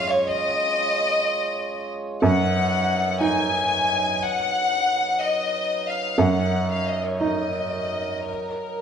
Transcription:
Already playing: F#2 G#3 C#4 F4 C#5
0.10 C#5
0.26 D#5
2.22 F#2 F#3 D#4 B4 F#5
3.21 D#4 G#5
4.20 F#5
5.19 D#5
5.86 F5
6.18 F#2 F#3 D#4 A#4 F#5
6.70 F5
6.86 D#5
7.04 C#5
7.21 D#4 D#5
8.28 A#4

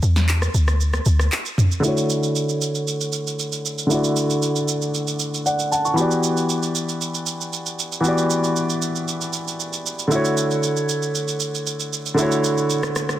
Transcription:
0.03 E2, shaker
0.16 snare, shaker
0.29 clap, shaker
0.42 cross-stick, shaker
0.54 D2, shaker
0.68 cross-stick, shaker
0.81 shaker
0.94 cross-stick, shaker
1.06 D2, shaker
1.19 cross-stick, shaker
1.32 clap, shaker
1.45 shaker
1.58 mid tom, shaker
1.71 shaker
1.80 D3 A3 E4, shaker
1.86 F#4 C#5
1.97 shaker
2.10 shaker
2.23 shaker
2.36 shaker
2.49 shaker
2.62 shaker
2.75 shaker
2.88 shaker
3.01 shaker
3.13 shaker
3.27 shaker
3.39 shaker
3.52 shaker
3.66 shaker
3.78 shaker
3.87 D3 A3 E4, shaker
3.92 F#4 D5
4.04 shaker
4.17 shaker
4.30 shaker
4.42 shaker
4.56 shaker
4.68 shaker
4.82 shaker
4.94 shaker
5.07 shaker
5.19 shaker
5.34 shaker
5.46 D5 F#5, shaker
5.59 shaker
5.72 F#5 A5, shaker
5.85 A5 C#6, shaker
5.94 E3 B3 F#4
5.98 G4 D5, shaker
6.11 shaker
6.24 shaker
6.37 shaker
6.49 shaker
6.63 shaker
6.75 shaker
6.89 shaker
7.01 shaker
7.14 shaker
7.26 shaker
7.41 shaker
7.53 shaker
7.66 shaker
7.79 shaker
7.92 shaker
8.00 E3 B3 F#4, shaker
8.06 G4 D5
8.18 shaker
8.30 shaker
8.44 shaker
8.56 shaker
8.70 shaker
8.82 shaker
8.96 shaker
9.08 shaker
9.21 shaker
9.33 shaker
9.48 shaker
9.60 shaker
9.73 shaker
9.86 shaker
9.99 shaker
10.07 D3 A3 E4, shaker
10.13 F#4 C#5
10.25 shaker
10.37 shaker
10.51 shaker
10.63 shaker
10.77 shaker
10.89 shaker
11.02 shaker
11.15 shaker
11.28 shaker
11.40 shaker
11.55 shaker
11.67 shaker
11.80 shaker
11.93 shaker
12.06 shaker
12.14 D3 A3 E4, shaker
12.20 F#4 C#5
12.32 shaker
12.44 shaker
12.58 shaker
12.70 shaker
12.83 cross-stick, shaker
12.96 cross-stick, shaker
13.09 cross-stick, shaker

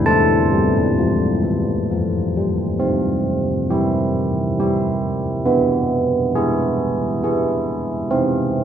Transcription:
0.06 A3 C5 A5
0.53 G3
0.98 F3
1.44 E3
1.91 F3
2.37 G3
2.80 C4
3.70 E4 G4
4.60 E4 G4
5.46 B3
6.35 E4 G#4
7.23 E4 G#4
8.11 C4

